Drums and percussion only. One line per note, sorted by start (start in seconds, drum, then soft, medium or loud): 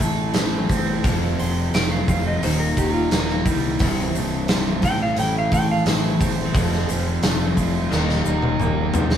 0.00 kick medium
0.00 open hi-hat medium
0.00 shaker loud
0.34 snare loud
0.34 open hi-hat medium
0.34 shaker medium
0.69 kick medium
0.69 open hi-hat medium
0.69 shaker medium
1.04 kick loud
1.04 open hi-hat medium
1.04 shaker medium
1.39 open hi-hat medium
1.74 snare loud
1.74 open hi-hat medium
1.74 shaker medium
2.08 kick medium
2.08 open hi-hat soft
2.08 shaker medium
2.43 open hi-hat medium
2.43 shaker medium
2.77 kick medium
2.77 open hi-hat medium
2.77 shaker medium
3.11 snare loud
3.11 open hi-hat medium
3.11 shaker medium
3.29 snare soft
3.46 kick loud
3.46 open hi-hat medium
3.46 shaker loud
3.79 kick loud
3.79 open hi-hat medium
3.79 shaker medium
4.15 open hi-hat medium
4.15 shaker medium
4.48 snare loud
4.48 open hi-hat medium
4.48 shaker medium
4.82 kick medium
4.82 open hi-hat medium
4.82 shaker medium
5.17 open hi-hat medium
5.17 shaker medium
5.52 kick medium
5.52 open hi-hat medium
5.52 shaker medium
5.86 snare loud
5.86 open hi-hat medium
5.86 shaker medium
6.21 kick medium
6.21 open hi-hat medium
6.21 shaker medium
6.55 kick loud
6.55 open hi-hat medium
6.55 shaker medium
6.73 snare soft
6.89 open hi-hat medium
6.89 shaker medium
7.07 shaker soft
7.23 snare loud
7.23 open hi-hat medium
7.23 shaker medium
7.57 kick medium
7.57 open hi-hat medium
7.57 shaker medium
7.74 shaker soft
7.92 snare medium
7.92 shaker medium
8.09 snare soft
8.26 shaker medium
8.42 mid tom medium
8.60 mid tom medium
8.60 shaker medium
8.94 floor tom loud
8.94 shaker medium
9.10 snare loud
9.10 shaker soft